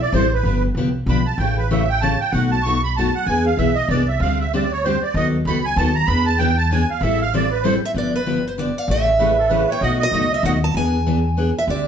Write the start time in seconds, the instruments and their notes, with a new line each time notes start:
0.02 accordion D5
0.13 upright bass A1, steel-string acoustic guitar E3 G3 C4 E4 A4, accordion C5
0.34 accordion B4
0.43 upright bass G1, steel-string acoustic guitar D3 F3 B3 D4 G4
0.75 upright bass C2, steel-string acoustic guitar D3 F3 B3 D4 G4
1.06 upright bass B1, steel-string acoustic guitar D3 F3 B3 D4 G4, accordion B5
1.26 accordion A5
1.38 upright bass A1, steel-string acoustic guitar C#3 E3 A3 C#4 G4, accordion G5
1.58 accordion B4
1.71 steel-string acoustic guitar C#3 E3 A3 C#4 G4, accordion E5
1.89 accordion G5
2.01 steel-string acoustic guitar C#3 E3 A3 C#4 G4, accordion A5
2.20 accordion G5
2.32 upright bass B1, steel-string acoustic guitar B2 F#3 A3 D#4 F#4, accordion F#5
2.51 accordion A5
2.62 steel-string acoustic guitar B2 F#3, accordion C#6
2.66 steel-string acoustic guitar A3 D#4 F#4
2.83 accordion B5
2.97 steel-string acoustic guitar B2 F#3 A3 D#4 F#4, accordion A5
3.15 accordion F#5
3.26 upright bass E2, steel-string acoustic guitar E3 B3 D4 G#4, accordion G#5
3.46 accordion F5
3.57 upright bass B1, steel-string acoustic guitar E3 B3 D4 G#4, accordion E5
3.75 accordion D#5
3.88 upright bass C2, steel-string acoustic guitar E3 B3 D4 G#4, accordion D5
4.08 accordion E5
4.20 upright bass D2, steel-string acoustic guitar D3 G3 C4 D4 G4, accordion F5
4.40 accordion E5
4.53 steel-string acoustic guitar D3 G3 C4 D4 G4, accordion D5
4.72 accordion C#5
4.84 steel-string acoustic guitar D3 G3 C4 D4 G4, accordion C5
5.02 accordion D5
5.14 upright bass D#2, steel-string acoustic guitar D#3 F#3 B3 D#4 A4, accordion D#5
5.45 upright bass C#2, steel-string acoustic guitar D#3 F#3 B3 D#4 A4, accordion B5
5.65 accordion G#5
5.76 upright bass D#2, steel-string acoustic guitar D#3 F#3 B3 D#4 A4, accordion A5
5.95 accordion A#5
6.07 upright bass E2, steel-string acoustic guitar E3 B3 D4 G#4, accordion B5
6.26 accordion A5
6.38 steel-string acoustic guitar E3 B3 D4 G#4, accordion G5
6.58 accordion A5
6.71 steel-string acoustic guitar E3 B3 D4 G#4, accordion G#5
6.90 accordion F5
7.01 upright bass A1, steel-string acoustic guitar E3 G3 C4 E4 A4, accordion E5
7.22 accordion F5
7.34 steel-string acoustic guitar E3 G3 C4 E4 A4, accordion D5
7.52 accordion B4
7.63 steel-string acoustic guitar E3 G3 C4 E4 A4, accordion C5
7.85 steel-string acoustic guitar E5
7.94 upright bass G1, steel-string acoustic guitar D3 F3 B3 D4 G4 D5
8.16 steel-string acoustic guitar B4
8.26 steel-string acoustic guitar D3 F3 B3 D4 G4
8.48 steel-string acoustic guitar C5
8.58 steel-string acoustic guitar D3 F3 B3 D4 G4 D5
8.78 steel-string acoustic guitar F5
8.88 upright bass A1, steel-string acoustic guitar C#3 E3 A3 C#4 G4 E5
9.19 steel-string acoustic guitar C#3 E3 A3 C#4 G4, accordion B4
9.38 accordion A4
9.50 steel-string acoustic guitar C#3 E3 A3 C#4 G4, accordion B4
9.68 accordion C#5, steel-string acoustic guitar G5
9.81 upright bass B1, steel-string acoustic guitar B2 F#3 A3 D#4 F#4 F#5, accordion D#5
10.00 accordion D#5, steel-string acoustic guitar D#5
10.12 upright bass C#2, steel-string acoustic guitar B2 F#3 A3 D#4 F#4
10.34 steel-string acoustic guitar E5
10.43 upright bass D#2, steel-string acoustic guitar B2 F#3 A3 D#4 F#4 F#5
10.64 steel-string acoustic guitar A5
10.74 upright bass E2, steel-string acoustic guitar E3 B3 D4 G#4 G#5
11.06 steel-string acoustic guitar E3 B3 D4 G#4
11.37 steel-string acoustic guitar E3 B3 D4 G#4
11.58 steel-string acoustic guitar E5
11.67 upright bass D2, steel-string acoustic guitar D3 G3 C4 D4 G4 D5